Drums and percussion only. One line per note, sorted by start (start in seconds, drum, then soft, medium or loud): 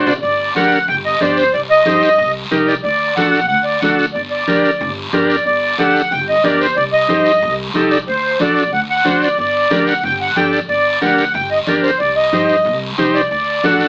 0.07 low conga medium
0.07 short guiro medium
0.23 high conga soft
0.23 long guiro medium
0.56 high conga medium
0.56 short guiro medium
0.72 short guiro medium
0.88 high conga soft
0.88 long guiro medium
1.21 high conga medium
1.21 short guiro medium
1.37 short guiro medium
1.53 high conga soft
1.53 long guiro medium
1.86 high conga medium
1.86 short guiro medium
2.03 short guiro medium
2.19 high conga soft
2.19 long guiro medium
2.52 high conga medium
2.52 short guiro medium
2.68 short guiro medium
2.84 high conga soft
2.84 long guiro medium
3.17 high conga medium
3.17 short guiro medium
3.34 short guiro medium
3.49 high conga soft
3.49 long guiro medium
3.82 high conga medium
3.82 short guiro medium
3.99 short guiro medium
4.15 high conga soft
4.15 long guiro medium
4.48 high conga medium
4.48 short guiro medium
4.65 short guiro medium
4.80 high conga soft
4.80 long guiro medium
5.13 high conga medium
5.13 short guiro medium
5.30 short guiro medium
5.46 high conga soft
5.46 long guiro medium
5.78 high conga medium
5.78 short guiro medium
5.96 short guiro medium
6.11 high conga soft
6.11 long guiro medium
6.44 high conga medium
6.44 short guiro medium
6.61 short guiro medium
6.77 high conga soft
6.77 long guiro medium
7.09 high conga medium
7.09 short guiro medium
7.26 short guiro medium
7.41 high conga soft
7.41 long guiro medium
7.74 high conga medium
7.74 short guiro medium
7.91 short guiro medium
8.07 high conga soft
8.07 long guiro medium
8.40 high conga medium
8.40 short guiro medium
8.56 short guiro medium
8.73 high conga soft
8.73 long guiro medium
9.05 high conga medium
9.05 short guiro medium
9.22 short guiro medium
9.38 high conga soft
9.38 long guiro medium
9.71 high conga medium
9.71 short guiro medium
9.87 short guiro medium
10.03 high conga soft
10.03 long guiro medium
10.36 high conga medium
10.36 short guiro medium
10.53 short guiro medium
10.69 high conga soft
10.69 long guiro medium
11.02 high conga medium
11.02 short guiro medium
11.18 short guiro medium
11.34 high conga soft
11.34 long guiro medium
11.67 high conga medium
11.67 short guiro medium
11.84 short guiro medium
12.00 high conga soft
12.00 long guiro medium
12.33 high conga medium
12.33 short guiro medium
12.49 short guiro medium
12.65 high conga soft
12.65 long guiro medium
12.98 high conga medium
12.98 short guiro medium
13.15 short guiro medium
13.31 high conga soft
13.31 long guiro medium
13.64 high conga medium
13.64 short guiro medium
13.80 short guiro medium